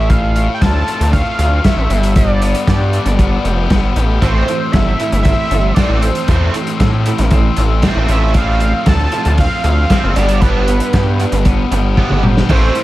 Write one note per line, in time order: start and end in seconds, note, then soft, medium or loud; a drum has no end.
0.00 0.48 A1 loud
0.00 0.11 E5 medium
0.09 1.39 A2 medium
0.09 0.54 F5 medium
0.09 kick loud
0.09 closed hi-hat soft
0.36 1.12 A3 medium
0.36 closed hi-hat medium
0.54 0.63 G5 medium
0.61 0.83 D2 medium
0.61 1.37 F4 medium
0.61 1.12 A5 loud
0.61 kick medium
0.61 snare loud
0.61 closed hi-hat medium
0.88 1.90 C4 medium
0.88 closed hi-hat medium
1.00 1.22 D2 medium
1.00 closed hi-hat medium
1.13 1.63 A3 medium
1.13 1.66 F5 loud
1.13 kick loud
1.13 closed hi-hat medium
1.38 1.60 D2 medium
1.38 1.90 F4 medium
1.38 closed hi-hat medium
1.64 1.90 A3 medium
1.64 2.16 E5 medium
1.64 kick loud
1.64 snare loud
1.64 closed hi-hat medium
1.76 1.88 A1 medium
1.90 2.54 G1 loud
1.90 2.14 G2 medium
1.90 closed hi-hat medium
2.03 closed hi-hat medium
2.15 3.45 G2 medium
2.15 2.64 D5 loud
2.15 kick loud
2.15 closed hi-hat medium
2.42 3.18 B3 medium
2.42 closed hi-hat medium
2.55 closed hi-hat medium
2.67 3.00 G2 medium
2.67 3.44 G4 medium
2.67 3.67 D5 medium
2.67 kick loud
2.67 snare loud
2.67 closed hi-hat medium
2.93 4.22 D4 medium
2.93 closed hi-hat medium
3.05 3.38 G1 medium
3.05 closed hi-hat medium
3.19 3.69 B3 medium
3.19 kick medium
3.19 closed hi-hat medium
3.44 3.68 F1 medium
3.44 3.95 G4 medium
3.44 closed hi-hat medium
3.70 3.94 G1 medium
3.70 4.22 B3 medium
3.70 kick loud
3.70 snare loud
3.70 closed hi-hat medium
3.96 4.19 A1 medium
3.96 4.22 G4 medium
3.96 closed hi-hat medium
4.22 4.43 A1 loud
4.22 6.28 A2 medium
4.22 4.46 E3 medium
4.22 4.46 A3 medium
4.22 4.47 C4 loud
4.22 4.74 C5 medium
4.22 kick medium
4.22 closed hi-hat medium
4.48 4.71 E3 medium
4.48 4.71 A3 medium
4.48 5.24 C4 medium
4.48 closed hi-hat medium
4.72 4.95 G1 medium
4.72 4.97 E3 medium
4.72 4.97 A3 medium
4.72 5.50 A4 medium
4.72 5.22 E5 medium
4.72 kick loud
4.72 snare loud
4.72 closed hi-hat medium
4.99 5.23 E3 medium
4.99 5.23 A3 medium
4.99 6.28 E4 medium
4.99 closed hi-hat medium
5.12 5.34 G1 medium
5.12 closed hi-hat medium
5.23 5.49 E3 medium
5.23 5.49 A3 medium
5.23 5.77 C4 medium
5.23 5.76 E5 loud
5.23 kick loud
5.23 closed hi-hat medium
5.51 5.72 G1 medium
5.51 5.75 E3 medium
5.51 5.75 A3 medium
5.51 6.02 A4 medium
5.51 closed hi-hat medium
5.74 6.01 E3 medium
5.74 6.01 A3 medium
5.74 6.54 C4 medium
5.74 6.01 C4 medium
5.74 6.03 D5 medium
5.74 kick loud
5.74 snare loud
5.74 closed hi-hat medium
5.89 6.11 A1 medium
6.01 6.26 E3 medium
6.01 6.26 A3 medium
6.01 6.79 A4 medium
6.01 6.54 C5 medium
6.01 closed hi-hat medium
6.15 closed hi-hat medium
6.28 6.50 E2 loud
6.28 7.57 A2 medium
6.28 6.53 E3 medium
6.28 6.53 A3 medium
6.28 6.53 C4 loud
6.28 kick loud
6.28 closed hi-hat medium
6.54 6.78 E3 medium
6.54 6.78 A3 medium
6.54 7.30 C4 medium
6.54 closed hi-hat medium
6.67 closed hi-hat medium
6.80 7.12 A2 medium
6.80 7.04 E3 medium
6.80 7.04 A3 medium
6.80 7.56 A4 medium
6.80 kick loud
6.80 snare loud
6.80 closed hi-hat medium
7.06 7.30 E3 medium
7.06 7.30 A3 medium
7.06 8.10 E4 medium
7.06 closed hi-hat medium
7.18 7.51 A1 medium
7.18 snare soft
7.18 closed hi-hat medium
7.31 7.55 E3 medium
7.31 7.55 A3 medium
7.31 7.82 C4 medium
7.31 kick loud
7.31 closed hi-hat medium
7.57 7.90 A1 medium
7.57 7.81 E3 medium
7.57 7.81 A3 medium
7.57 8.09 A4 medium
7.57 closed hi-hat medium
7.82 8.07 E3 medium
7.82 8.07 A3 medium
7.82 8.09 C4 medium
7.82 8.08 C4 loud
7.82 kick medium
7.82 snare loud
7.82 closed hi-hat medium
7.96 8.07 A1 medium
8.08 8.73 A1 loud
8.08 8.33 A2 medium
8.08 8.33 F3 medium
8.08 8.33 A3 medium
8.08 8.34 C4 medium
8.08 8.34 E5 medium
8.08 closed hi-hat medium
8.34 9.64 A2 medium
8.34 8.59 F3 medium
8.34 8.59 A3 medium
8.34 8.59 C4 loud
8.34 8.84 F5 loud
8.34 kick loud
8.34 closed hi-hat medium
8.60 8.84 F3 medium
8.60 8.84 A3 medium
8.60 9.37 C4 medium
8.60 closed hi-hat medium
8.86 9.08 D2 medium
8.86 9.10 F3 medium
8.86 9.10 A3 medium
8.86 9.63 A4 medium
8.86 9.36 A5 loud
8.86 kick loud
8.86 snare loud
8.86 closed hi-hat medium
9.12 9.36 F3 medium
9.12 9.36 A3 medium
9.12 10.16 F4 medium
9.12 closed hi-hat medium
9.25 9.47 D2 medium
9.25 closed hi-hat medium
9.38 9.62 F3 medium
9.38 9.62 A3 medium
9.38 9.89 C4 medium
9.38 9.63 F5 loud
9.38 kick loud
9.38 closed hi-hat medium
9.64 9.86 D2 medium
9.64 9.88 F3 medium
9.64 9.88 A3 medium
9.64 10.16 A4 medium
9.64 10.12 F5 loud
9.64 closed hi-hat medium
9.89 10.14 F3 medium
9.89 10.14 A3 medium
9.89 10.15 C4 medium
9.89 10.16 C4 medium
9.89 kick loud
9.89 snare loud
9.89 closed hi-hat medium
10.04 10.14 F#1 medium
10.16 10.81 G1 loud
10.16 10.41 G2 medium
10.16 10.40 B3 medium
10.16 10.40 D4 medium
10.16 10.41 G4 medium
10.16 10.42 D5 medium
10.16 closed hi-hat medium
10.29 closed hi-hat medium
10.41 11.72 G2 medium
10.41 10.66 B3 medium
10.41 10.66 D4 medium
10.41 10.66 G4 medium
10.41 11.45 B4 medium
10.41 kick loud
10.41 closed hi-hat medium
10.68 10.91 B3 medium
10.68 11.45 B3 medium
10.68 10.91 D4 medium
10.68 closed hi-hat medium
10.80 closed hi-hat medium
10.93 11.26 G2 medium
10.93 11.17 B3 medium
10.93 11.17 D4 medium
10.93 11.71 G4 medium
10.93 kick loud
10.93 snare loud
10.93 closed hi-hat medium
11.20 11.43 B3 medium
11.20 12.49 D4 medium
11.20 11.43 D4 medium
11.20 closed hi-hat medium
11.32 11.65 G1 medium
11.32 closed hi-hat medium
11.45 11.69 B3 medium
11.45 11.96 B3 medium
11.45 11.69 D4 medium
11.45 kick loud
11.45 closed hi-hat medium
11.71 12.04 G1 medium
11.71 11.95 B3 medium
11.71 11.95 D4 medium
11.71 12.22 G4 medium
11.71 closed hi-hat medium
11.97 12.22 B3 medium
11.97 12.49 B3 medium
11.97 12.22 D4 medium
11.97 12.22 G4 medium
11.97 kick loud
12.10 12.43 G1 medium
12.10 mid tom medium
12.23 12.47 B3 medium
12.23 12.47 D4 medium
12.23 12.49 G4 medium
12.23 mid tom medium
12.37 snare medium
12.49 12.71 A1 loud
12.49 12.84 A2 medium
12.49 12.74 E3 medium
12.49 12.74 A3 medium
12.49 12.74 C4 loud
12.49 12.84 C5 medium
12.49 kick loud
12.49 crash medium
12.75 12.84 E3 medium
12.75 12.84 A3 medium
12.75 12.84 C4 medium
12.75 closed hi-hat medium